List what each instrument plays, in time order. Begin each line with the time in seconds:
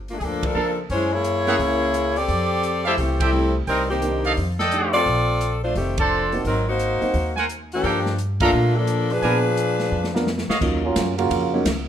Already playing: upright bass G1
0.08 saxophone section A3 A#3 D4 F4, open hi-hat
0.19 upright bass D2, saxophone section G#4, kick, open hi-hat
0.23 saxophone section F3 A#3 D4 A4
0.43 saxophone section F3 D4 A4 A#4, kick, ride
0.54 upright bass C#3, grand piano A#3 D4 F4 A4, trumpet section A4 A#4 F5 A5
0.90 upright bass F#2, saxophone section G#3 C#4 E4 C5, kick, open hi-hat
1.13 saxophone section A#3 E4 G#4 C#5
1.24 closed hi-hat
1.46 grand piano A#3 C#4 E4 G#4, trumpet section G#4 A#4 E5 F#5, snare, open hi-hat
1.59 upright bass C#2, kick, open hi-hat
1.94 closed hi-hat
2.16 saxophone section C4 G4 A4 D5, open hi-hat
2.28 upright bass F2, kick, open hi-hat
2.63 closed hi-hat
2.85 saxophone section A3 E4 G4 C5, trumpet section G4 A4 E5 F5, open hi-hat
2.98 upright bass C2, saxophone section E3 A3 C4 G4, kick, open hi-hat
3.20 saxophone section G3 C4 E4 A4, trumpet section G4 A4 E5 G5, kick, ride
3.32 grand piano A3 C4 E4 G4
3.67 upright bass C2, saxophone section G3 C4 D#4 A#4, trumpet section A#4 C5 D#5 G5, kick, open hi-hat
3.90 saxophone section D#3 A#3 C4 G4
4.02 grand piano A#3 D4 D#4 G4, closed hi-hat
4.24 trumpet section A4 D5 D#5 F5, open hi-hat
4.37 upright bass F2, kick, open hi-hat
4.59 trumpet section A4 D5 D#5 G5, snare
4.71 grand piano A3 D4 D#4 G4, closed hi-hat
4.94 saxophone section C4 F4 A4 D5, open hi-hat
5.06 upright bass A#1, kick, open hi-hat
5.41 closed hi-hat
5.63 saxophone section A3 D4 F4 C5
5.75 upright bass F1, saxophone section D#3 A3 C4 G4, kick, open hi-hat
5.98 saxophone section F3 C4 D4 A4, trumpet section A4 C5 D5 A5, kick, ride
6.32 grand piano A#3 C4 D#4 F#4, open hi-hat
6.45 upright bass G#1, saxophone section F#3 C4 D#4 A#4, kick, open hi-hat
6.69 saxophone section A#3 D#4 F#4 C5
6.79 closed hi-hat
7.01 grand piano A#3 C4 D#4 F#4, muted upright bass stroke, open hi-hat
7.14 upright bass D#2, kick, open hi-hat
7.36 trumpet section A#4 C5 F#5 G#5, snare
7.49 closed hi-hat
7.72 saxophone section F3 A#3 D4 G4, open hi-hat
7.83 upright bass G2, trumpet section A4 A#4 F5 G5, kick, open hi-hat
8.06 snare
8.18 closed hi-hat
8.40 grand piano A#2 D4 F4 A4, saxophone section A3 A#3 D4 F4, trumpet section A4 A#4 F5 A#5, kick, ride
8.53 upright bass A#2
8.76 saxophone section F3 A#3 D4 A4
8.87 closed hi-hat
9.10 saxophone section F3 D4 G#4 B4, open hi-hat
9.22 upright bass A#2, grand piano B3 D4 F4 G#4, trumpet section A#4 B4 D5 G#5, kick, open hi-hat
9.57 closed hi-hat
9.80 snare, open hi-hat
9.91 upright bass F2
10.04 snare
10.15 grand piano B3 D4 F4 A#4, snare
10.27 snare
10.38 snare
10.48 trumpet section F#4 C#5 D#5 F5, muted upright bass stroke, snare
10.61 upright bass D#2, grand piano F#3 A#3 C#4 D#4 F4, kick, crash
10.83 trombone section F#3 A#3 C#4 F4
10.96 upright bass F#2, kick, snare, hi-hat pedal, ride
11.18 trombone section C#3 A#3 F4 F#4, ride
11.30 upright bass F2, kick, ride
11.53 grand piano F#3 A#3 C#4 D#4 F#4
11.65 upright bass C#2, kick, snare, hi-hat pedal, ride